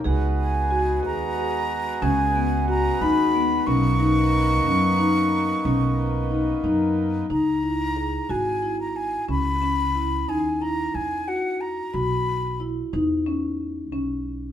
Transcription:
X:1
M:11/8
L:1/16
Q:1/4=91
K:C#dor
V:1 name="Flute"
z2 g4 a6 g4 a2 b4 | c'16- c'2 z4 | a6 g3 a g2 b6 g2 a2 | g2 f2 a2 b4 z12 |]
V:2 name="Celesta"
z4 g4 z12 z2 | z16 z6 | z16 z6 | z16 z6 |]
V:3 name="Marimba"
G4 F2 G2 G4 C2 B,2 F2 D2 B,2 | C2 D4 C2 D4 C4 D2 D4 | D2 E2 G2 F2 E4 C2 C2 E2 D2 E2- | E2 F4 F4 E2 D2 C4 C4 |]
V:4 name="Harmonium"
[G,F]16- [G,F]6 | [A,D]16- [A,D]6 | z16 z6 | z16 z6 |]
V:5 name="Harmonium"
B,16- B,6- | B,16- B,6 | z16 z6 | z16 z6 |]
V:6 name="Upright bass" clef=bass
C,,6 D,,6 C,,6 D,,4 | B,,,6 F,,6 B,,,6 F,,4 | C,,6 G,,,6 C,,6 D,,4 | E,,6 B,,,6 E,,6 B,,,4 |]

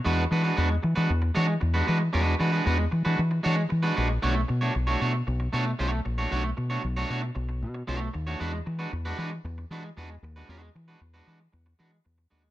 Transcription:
X:1
M:4/4
L:1/16
Q:1/4=115
K:Bdor
V:1 name="Clean electric guitar"
[G,DFB] z [G,DFB] [G,DFB] [G,DFB] z2 [G,DFB] z2 [G,DFc] z2 [G,DFB] [G,DFB] z | [G,DFB]2 [G,DFB] [G,DFB] [G,DFB] z2 [G,DFB] z2 [G,DFc] z2 [G,DFB] [G,DFB] z | [A,DFc] z2 [A,DFc] z [A,DFc] [A,DFc] z3 [A,DFc] z [A,DFc]2 z [A,DFc] | [A,DFc] z2 [A,DFc] z [A,DFc] [A,DFc] z4 z [A,DFc]2 z [A,DFc] |
[G,DFB] z2 [G,DFB] z [G,DFB] [G,DFB] z3 [G,DFB] z [G,DFB] z2 [G,DFB] | [G,DFB]2 z [G,DFB] z [G,DFB] [G,DFB] z3 [G,DFB] z3 [G,DFB] z |]
V:2 name="Fingered electric bass" clef=bass
E,,2 E,2 E,,2 E, E, E,,2 E,2 E,,2 E,2 | E,,2 E,2 E,,2 E, E, E,2 E,2 E,2 ^A,,,2 | B,,,2 B,,2 B,,,2 B,,2 B,,,2 B,,2 B,,,2 ^A,,,2 | B,,,2 B,,2 B,,,2 B,,2 B,,,2 B,,2 B,,,2 ^D,,2 |
E,,2 E,2 E,,2 E,2 E,,2 E,2 E,,2 ^D,,2 | E,,2 E,2 E,,2 E,2 E,,2 E,2 E,,2 ^D,,2 |]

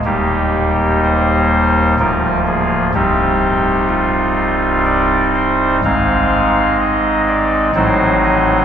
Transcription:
X:1
M:3/4
L:1/8
Q:1/4=63
K:Eb
V:1 name="Pipe organ"
G2 c2 B A | G2 F2 d c | f2 e d c e |]
V:2 name="Pipe organ" clef=bass
[E,,,E,,G,B,E]4 [D,,,D,,F,B,F]2 | [C,,,C,,G,CE]6 | [A,,,A,,A,CE]4 [=A,,,=A,,^F,CE]2 |]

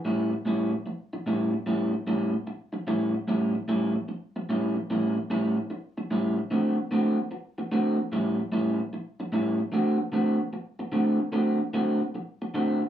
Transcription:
X:1
M:4/4
L:1/8
Q:"Swing" 1/4=149
K:Amix
V:1 name="Clean electric guitar"
[A,,G,CE] z [A,,G,CE] z3 [A,,G,CE] z | [A,,G,CE] z [A,,G,CE] z3 [A,,G,CE] z | [A,,G,CE] z [A,,G,CE] z3 [A,,G,CE] z | [A,,G,CE] z [A,,G,CE] z3 [A,,G,CE] z |
[D,A,=CF] z [D,A,CF] z3 [D,A,CF] z | [A,,G,CE] z [A,,G,CE] z3 [A,,G,CE] z | [D,A,=CF] z [D,A,CF] z3 [D,A,CF] z | [D,A,=CF] z [D,A,CF] z3 [D,A,CF] z |]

